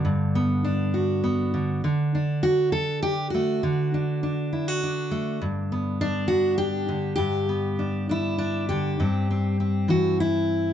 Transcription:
0.00 1.53 D3 medium
0.00 0.64 D4 medium
0.05 1.81 G2 medium
0.35 1.22 B3 medium
0.65 2.14 D4 medium
0.94 1.81 F#4 soft
1.24 1.81 B3 soft
1.54 1.83 D3 medium
1.84 3.62 D3 medium
2.15 3.94 D4 soft
2.43 2.72 F#4 medium
2.72 3.02 A4 medium
3.03 3.30 G4 loud
3.30 4.51 F#4 medium
3.34 3.61 A3 medium
3.63 6.87 D3 medium
3.94 4.23 D4 soft
4.23 4.83 D4 soft
4.53 4.68 E4 soft
4.68 5.42 F#4 soft
4.83 6.01 D4 soft
5.11 5.38 A3 medium
5.42 7.17 G2 medium
5.72 7.16 B3 soft
6.01 6.89 D4 medium
6.28 6.57 F#4 medium
6.58 7.14 G4 loud
6.89 8.69 D3 medium
7.16 8.96 G2 medium
7.16 8.07 G4 medium
7.49 8.97 B3 soft
7.79 8.08 D4 soft
8.09 8.37 D4 soft
8.09 8.68 E4 medium
8.38 9.00 D4 medium
8.69 9.00 D3 medium
8.69 9.90 G4 medium
9.00 10.73 G2 medium
9.00 9.29 C4 soft
9.31 9.59 C4 soft
9.60 10.73 C4 soft
9.88 10.73 E3 medium
9.88 10.20 F#4 medium
10.20 10.73 E4 medium

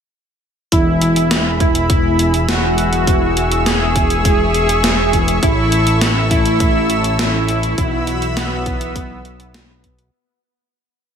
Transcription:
0.72 5.40 E1 medium
0.72 2.45 E3 medium
0.72 2.45 G#3 medium
0.72 2.45 B3 medium
0.72 2.45 E4 medium
0.72 1.49 E4 loud
0.72 5.39 G#4 medium
0.72 7.74 E5 medium
0.72 3.05 B5 medium
0.72 5.39 E6 medium
0.72 kick loud
0.72 closed hi-hat medium
1.01 closed hi-hat medium
1.16 closed hi-hat medium
1.31 snare loud
1.31 closed hi-hat medium
1.60 2.37 E4 medium
1.60 kick loud
1.60 closed hi-hat medium
1.75 closed hi-hat medium
1.90 kick loud
1.90 closed hi-hat medium
2.19 closed hi-hat medium
2.34 closed hi-hat medium
2.48 3.04 E3 loud
2.48 3.04 G#3 medium
2.48 3.04 B3 medium
2.48 3.04 E4 loud
2.48 3.54 F#4 loud
2.48 snare loud
2.48 closed hi-hat medium
2.78 closed hi-hat medium
2.93 closed hi-hat medium
3.07 4.51 E3 medium
3.07 4.51 G#3 medium
3.07 4.51 B3 medium
3.07 4.51 E4 loud
3.07 7.74 C#6 medium
3.07 kick loud
3.07 closed hi-hat medium
3.37 closed hi-hat medium
3.52 closed hi-hat medium
3.66 5.31 G#4 loud
3.66 snare loud
3.66 closed hi-hat medium
3.96 kick loud
3.96 closed hi-hat medium
4.10 closed hi-hat medium
4.25 kick loud
4.25 closed hi-hat medium
4.54 4.68 E3 medium
4.54 4.68 G#3 medium
4.54 4.68 B3 medium
4.54 4.68 G#4 loud
4.54 closed hi-hat medium
4.69 closed hi-hat medium
4.84 snare loud
4.84 closed hi-hat medium
5.13 5.39 A2 medium
5.13 5.39 E3 medium
5.13 5.39 G#3 medium
5.13 5.39 B3 medium
5.13 5.39 E4 loud
5.13 kick medium
5.13 closed hi-hat medium
5.28 closed hi-hat medium
5.43 7.75 A1 medium
5.43 7.16 A2 medium
5.43 7.16 E3 medium
5.43 7.16 A3 medium
5.43 7.16 C#4 medium
5.43 6.19 E4 loud
5.43 7.16 E4 medium
5.43 7.76 A4 medium
5.43 7.76 E6 medium
5.43 kick loud
5.43 closed hi-hat medium
5.72 closed hi-hat medium
5.87 closed hi-hat medium
6.01 snare loud
6.01 closed hi-hat medium
6.31 7.07 E4 loud
6.31 kick loud
6.31 closed hi-hat medium
6.46 closed hi-hat medium
6.60 kick loud
6.60 closed hi-hat medium
6.90 closed hi-hat medium
7.04 closed hi-hat medium
7.19 7.74 A2 loud
7.19 7.74 E3 medium
7.19 7.74 A3 medium
7.19 7.74 C#4 medium
7.19 8.25 E4 loud
7.19 7.74 E4 loud
7.19 snare loud
7.19 closed hi-hat medium
7.49 closed hi-hat medium
7.63 closed hi-hat medium
7.78 10.10 B1 medium
7.78 9.21 B2 medium
7.78 9.21 E3 medium
7.78 9.21 F#3 medium
7.78 9.21 B3 medium
7.78 9.21 E4 loud
7.78 10.11 F#4 medium
7.78 10.11 E5 medium
7.78 10.11 B5 medium
7.78 10.11 E6 medium
7.78 kick loud
7.78 closed hi-hat medium
8.07 closed hi-hat medium
8.22 closed hi-hat medium
8.37 10.01 B3 loud
8.37 snare loud
8.37 closed hi-hat medium
8.66 kick loud
8.66 closed hi-hat medium
8.81 closed hi-hat medium
8.96 kick loud
8.96 closed hi-hat medium
9.25 closed hi-hat medium
9.40 closed hi-hat medium
9.54 snare loud
9.54 closed hi-hat medium
9.84 kick medium
9.84 closed hi-hat medium
9.99 closed hi-hat medium

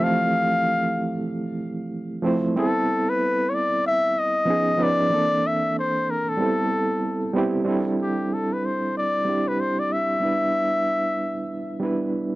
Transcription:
0.00 1.12 E3 medium
0.00 2.22 F3 medium
0.00 2.24 A3 medium
0.00 0.02 C4 medium
0.00 1.11 C4 medium
0.00 2.26 E4 medium
0.00 2.58 G4 medium
0.00 1.12 A4 medium
0.00 1.30 F5 loud
2.22 2.51 F3 medium
2.22 2.52 A3 medium
2.22 2.52 C4 medium
2.22 2.53 E4 medium
2.27 2.53 C5 medium
2.54 3.65 G3 medium
2.54 3.66 B3 medium
2.54 3.66 C4 medium
2.54 3.67 E4 medium
2.59 3.11 A4 loud
2.59 3.68 A4 medium
3.09 3.51 B4 medium
3.49 3.56 C#5 medium
3.55 3.85 D5 loud
3.87 4.20 E5 loud
4.19 4.84 D#5 loud
4.45 4.74 F3 medium
4.45 4.75 B3 medium
4.45 4.76 C#4 medium
4.45 4.76 D#4 medium
4.50 4.77 G#4 medium
4.77 5.06 F3 medium
4.77 5.07 B3 medium
4.77 5.07 C#4 medium
4.77 5.08 D#4 medium
4.82 5.09 B4 medium
4.82 5.48 D5 loud
5.10 6.21 E3 medium
5.10 6.21 A#3 medium
5.10 6.22 C4 medium
5.10 6.22 D4 medium
5.14 6.23 A4 medium
5.47 5.77 E5 medium
5.79 6.12 C5 medium
6.11 6.31 A#4 medium
6.29 7.36 A4 medium
6.37 7.22 G3 medium
6.37 7.23 B3 medium
6.37 7.23 C4 medium
6.37 7.24 E4 medium
6.42 7.24 A4 medium
7.33 7.62 G3 medium
7.33 7.63 B3 medium
7.33 7.63 C4 medium
7.33 7.64 E4 medium
7.38 7.64 G4 loud
7.65 8.76 G3 medium
7.65 8.76 C4 medium
7.65 8.77 D4 medium
7.65 8.77 E4 medium
7.69 8.78 A4 medium
8.02 8.35 G4 medium
8.34 8.55 A4 medium
8.53 8.67 B4 medium
8.65 8.96 C5 medium
8.98 9.50 D5 medium
9.24 10.09 G3 medium
9.24 10.10 C4 medium
9.24 10.10 D4 medium
9.24 10.11 E4 medium
9.29 10.12 G4 medium
9.48 9.62 B4 medium
9.61 9.81 C5 medium
9.79 9.94 D5 medium
9.93 11.83 E5 loud
10.20 11.31 G3 medium
10.20 11.32 B3 medium
10.20 11.32 D4 medium
10.20 11.33 E4 medium
10.25 11.33 B4 medium
11.80 12.35 G3 medium
11.80 12.35 B3 medium
11.80 12.35 D4 medium
11.80 12.35 E4 medium
11.84 12.35 B4 medium

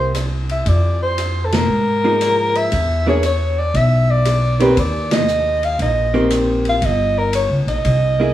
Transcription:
0.00 0.62 C2 medium
0.00 0.11 A#3 medium
0.00 0.11 E4 medium
0.00 0.12 G4 medium
0.00 0.12 C5 loud
0.15 cross-stick medium
0.15 hi-hat pedal medium
0.15 ride medium
0.49 0.70 E5 medium
0.49 ride soft
0.66 1.65 F2 medium
0.66 1.02 D5 medium
0.66 kick soft
0.66 ride medium
1.02 1.46 C5 medium
1.18 hi-hat pedal medium
1.18 ride medium
1.45 1.56 A4 medium
1.52 2.58 A#4 medium
1.52 snare medium
1.52 ride medium
1.68 2.67 G#2 medium
2.04 2.69 F3 soft
2.04 2.69 A#3 medium
2.04 2.69 D#4 medium
2.04 2.69 G#4 medium
2.21 cross-stick medium
2.21 hi-hat pedal medium
2.21 ride medium
2.55 3.07 E5 medium
2.55 ride soft
2.72 3.70 E2 medium
2.72 kick soft
2.72 ride medium
3.07 3.21 E3 medium
3.07 3.22 A#3 medium
3.07 3.22 D4 medium
3.07 3.22 G#4 medium
3.07 3.23 C#5 medium
3.23 3.60 C#5 medium
3.23 hi-hat pedal medium
3.23 ride medium
3.59 3.77 D5 medium
3.74 4.73 B1 medium
3.74 4.12 E5 loud
3.74 kick soft
3.74 ride soft
4.10 4.64 D5 medium
4.25 cross-stick medium
4.25 hi-hat pedal soft
4.25 ride medium
4.60 4.75 D#3 medium
4.60 4.75 A#3 medium
4.60 4.76 C4 medium
4.60 4.76 G4 medium
4.60 4.81 B4 medium
4.60 ride soft
4.77 5.75 D#2 medium
4.77 5.15 D5 loud
4.77 kick soft
4.77 ride medium
5.11 5.66 D#5 loud
5.11 snare medium
5.11 ride medium
5.28 hi-hat pedal medium
5.63 5.80 F5 loud
5.63 ride soft
5.79 6.77 A#1 medium
5.79 6.27 D#5 medium
5.79 kick soft
5.79 ride soft
6.14 6.78 D#3 medium
6.14 6.78 A#3 medium
6.14 6.78 C4 medium
6.14 6.79 G4 medium
6.30 cross-stick medium
6.30 hi-hat pedal medium
6.30 ride medium
6.65 ride soft
6.69 6.87 F5 medium
6.82 7.46 G1 medium
6.82 7.20 D#5 loud
6.82 kick soft
6.82 ride medium
7.18 7.34 A#4 medium
7.33 7.50 C#5 medium
7.33 hi-hat pedal medium
7.33 ride medium
7.50 7.65 C#2 medium
7.66 7.82 A#1 medium
7.66 8.34 D#5 medium
7.66 ride soft
7.85 8.34 C2 medium
7.85 kick soft
7.85 ride medium
8.20 8.34 A#3 medium
8.20 8.34 E4 medium
8.20 8.34 G#4 medium

